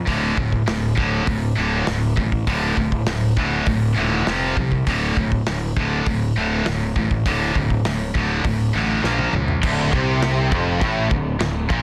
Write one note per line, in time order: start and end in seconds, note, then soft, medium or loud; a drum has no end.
0.06 0.32 D1 medium
0.06 0.35 D2 medium
0.06 0.35 A2 medium
0.06 0.36 D3 medium
0.06 kick loud
0.06 open hi-hat soft
0.36 0.62 D1 medium
0.36 0.64 D2 medium
0.36 0.64 A2 medium
0.36 kick medium
0.52 kick medium
0.66 0.92 D1 medium
0.66 0.94 D2 medium
0.66 0.94 A2 medium
0.66 snare loud
0.66 open hi-hat medium
0.95 1.22 D1 medium
0.95 1.25 D2 medium
0.95 1.25 A2 loud
0.95 1.25 D3 medium
0.95 kick medium
1.27 1.52 D1 medium
1.27 1.54 D2 medium
1.27 1.54 A2 medium
1.27 kick loud
1.27 open hi-hat medium
1.55 1.82 D1 medium
1.55 1.85 D2 medium
1.55 1.85 A2 loud
1.55 1.85 D3 loud
1.87 2.13 D1 medium
1.87 2.14 D2 medium
1.87 2.14 A2 medium
1.87 snare loud
1.87 open hi-hat medium
2.16 2.42 A1 medium
2.16 2.44 D2 medium
2.16 2.44 A2 medium
2.16 kick medium
2.32 kick medium
2.47 2.72 D1 medium
2.47 2.76 D2 medium
2.47 2.76 A2 loud
2.47 2.76 D3 loud
2.47 kick medium
2.47 open hi-hat medium
2.77 3.02 D1 medium
2.77 3.04 D2 medium
2.77 3.04 A2 medium
2.77 kick medium
2.92 kick medium
3.07 3.32 D1 medium
3.07 3.34 D2 medium
3.07 3.34 A2 medium
3.07 snare loud
3.07 open hi-hat medium
3.36 3.61 D1 medium
3.36 3.65 D2 medium
3.36 3.65 A2 loud
3.36 3.66 D3 medium
3.36 kick medium
3.66 3.92 D1 loud
3.66 3.93 D2 medium
3.66 3.94 A2 medium
3.66 kick loud
3.66 open hi-hat medium
3.94 4.21 D#1 medium
3.94 4.24 D2 loud
3.94 4.24 A2 medium
3.94 4.25 D3 loud
4.26 4.52 F1 medium
4.26 4.55 F2 loud
4.26 4.55 C3 medium
4.26 4.55 F3 loud
4.26 snare medium
4.26 open hi-hat soft
4.56 4.81 C2 loud
4.56 4.84 F2 medium
4.56 4.84 C3 medium
4.56 kick medium
4.72 kick medium
4.87 5.11 D1 medium
4.87 5.15 D2 loud
4.87 5.16 A2 medium
4.87 5.16 D3 loud
4.87 kick medium
4.87 open hi-hat medium
5.17 5.41 D1 medium
5.17 5.44 D2 medium
5.17 5.44 A2 medium
5.17 kick medium
5.32 kick medium
5.47 5.71 D1 medium
5.47 5.74 D2 medium
5.47 5.74 A2 medium
5.47 snare loud
5.47 open hi-hat medium
5.76 6.01 D1 medium
5.76 6.05 D2 loud
5.76 6.05 A2 medium
5.76 6.05 D3 loud
5.76 kick medium
6.06 6.31 D1 medium
6.06 6.34 D2 medium
6.06 6.34 A2 medium
6.06 kick loud
6.06 open hi-hat medium
6.36 6.61 D1 medium
6.36 6.64 D2 medium
6.36 6.65 A2 medium
6.36 6.65 D3 loud
6.66 6.91 D1 medium
6.66 6.94 D2 medium
6.66 6.94 A2 medium
6.66 snare medium
6.66 open hi-hat soft
6.96 7.20 A1 medium
6.96 7.23 D2 medium
6.96 7.23 A2 medium
6.96 kick medium
7.11 kick medium
7.26 7.50 D1 medium
7.26 7.54 D2 loud
7.26 7.54 A2 medium
7.26 7.55 D3 loud
7.26 kick medium
7.26 open hi-hat medium
7.55 7.80 D1 medium
7.55 7.83 D2 medium
7.55 7.83 A2 medium
7.55 kick medium
7.70 kick medium
7.85 8.10 D1 medium
7.85 8.12 D2 medium
7.85 8.12 A2 medium
7.85 snare loud
7.85 open hi-hat medium
8.14 8.39 D1 medium
8.14 8.43 D2 medium
8.14 8.43 A2 loud
8.14 8.43 D3 medium
8.14 kick medium
8.44 8.69 D1 medium
8.44 8.71 D2 medium
8.44 8.72 A2 medium
8.44 kick loud
8.44 open hi-hat medium
8.73 8.99 A1 medium
8.73 9.02 D2 medium
8.73 9.02 A2 loud
8.73 9.02 D3 loud
9.03 9.28 A#1 medium
9.03 9.32 A#2 medium
9.03 9.32 F3 medium
9.03 9.32 A#3 medium
9.03 snare medium
9.19 high tom medium
9.33 9.58 C#2 medium
9.33 9.60 A#2 medium
9.33 9.61 F3 medium
9.33 mid tom medium
9.48 floor tom medium
9.63 9.91 D1 loud
9.63 9.91 D2 loud
9.63 kick loud
9.63 crash loud
9.63 crash medium
9.91 10.48 C2 medium
9.91 10.51 C3 loud
9.91 kick loud
10.22 snare loud
10.22 crash medium
10.51 10.80 F1 loud
10.51 10.81 F2 loud
10.51 kick loud
10.81 11.09 A1 loud
10.81 11.09 A2 loud
10.81 kick loud
10.81 crash medium
11.09 11.39 D1 medium
11.09 11.34 D2 medium
11.09 kick loud
11.39 11.68 D1 medium
11.39 11.64 D2 medium
11.39 snare loud
11.39 crash medium
11.69 11.82 A#1 medium
11.69 11.82 A#2 loud
11.69 kick loud